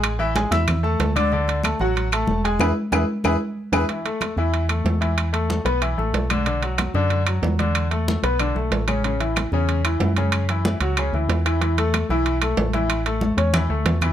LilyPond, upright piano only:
\new Staff \with { instrumentName = "Upright piano" } { \time 4/4 \key a \major \tempo 4 = 187 <gis gis' gis''>8 <e e' e''>8 <gis gis' gis''>8 <e' e'' e'''>4 <a a' a''>4 <d d' d''>8 | <d d' d''>4 <a a' a''>8 <fis fis' fis''>4 <a a' a''>4 <gis gis' gis''>8 | <e' gis' b'>8 r8 <e' gis' b'>8 r8 <e' gis' b'>8 r4 <e' gis' b'>8 | <e e'>8 <a a'>4 <e e'>4 <a a'>4 <e e'>8~ |
<e e'>8 <a a'>4 <b b'>8 <e e'>8 <a a'>4 <d d'>8 | <d d'>8 <fis fis'>4 <d d'>4 <fis fis'>4 <d d'>8~ | <d d'>8 <a a'>4 <b b'>8 <d d'>8 <a a'>4 <cis cis'>8 | <cis cis'>8 <e e'>4 <cis cis'>4 <e e'>4 <cis cis'>8~ |
<cis cis'>8 <e e'>4 <fis fis'>8 <cis cis'>8 <e e'>4 <e e'>8 | <e e'>8 <a a'>4 <e e'>4 <a a'>4 <e e'>8~ | <e e'>8 <a a'>4 <cis' cis''>8 <e e'>8 <a a'>4 <e e'>8 | }